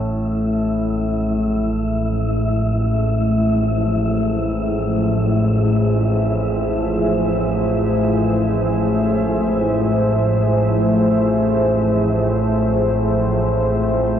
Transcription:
Already playing: A1 A2 F3 A3 E4 G#4 E5
1.78 C5
3.08 E5

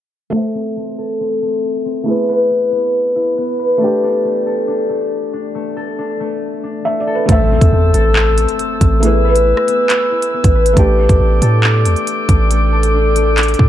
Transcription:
0.30 A3 A4
0.36 E5
0.55 C4
0.77 A3
0.98 A4
1.20 C4
1.42 A3
1.85 C4
2.04 A3 B3 E4
2.08 G#4 B4
2.29 B4
2.50 E4
2.72 B3
3.16 E4
3.38 B3
3.59 B4
3.78 A3 D4 A4
3.84 G4
4.03 D4
4.24 A3
4.46 A4
4.68 D4
4.89 A3
5.33 D4
5.55 A3
5.77 A4
5.99 D4
6.20 A3
6.64 D4
6.85 A3 E5
7.00 D5
7.07 A4
7.15 B4
7.26 A1 A3 A4 C5 A5 E6, kick, closed hi-hat, impact
7.30 C5 E5
7.50 C4
7.61 E2, kick, closed hi-hat
7.72 E2 A3
7.94 A1 A4, closed hi-hat
8.16 C4, clap
8.37 A3, closed hi-hat
8.48 closed hi-hat
8.59 closed hi-hat
8.81 A1 C4, kick, closed hi-hat
9.00 A3 B3 E4 B4 G#5 E6, closed hi-hat
9.04 G#4 B4
9.25 B4
9.36 closed hi-hat
9.46 E4
9.57 cross-stick
9.68 B3, closed hi-hat
9.90 clap, closed hi-hat
10.12 E4
10.22 closed hi-hat
10.33 B3
10.44 A1, kick, closed hi-hat
10.55 B4
10.66 G#1, closed hi-hat
10.73 A1 A3 D4 A4 G5 D6, kick, closed hi-hat
10.79 G4
10.99 D4
11.09 A1, kick, closed hi-hat
11.20 A1 A3
11.42 A2 A4, closed hi-hat
11.63 D4, clap
11.85 E2 A3, closed hi-hat
11.96 closed hi-hat
12.07 closed hi-hat
12.29 A1 D4, kick, closed hi-hat
12.51 A3, closed hi-hat
12.72 A4
12.83 closed hi-hat
12.94 D4
13.16 A3, closed hi-hat
13.38 clap, closed hi-hat
13.43 closed hi-hat
13.48 closed hi-hat
13.54 closed hi-hat
13.59 A2 D4, kick

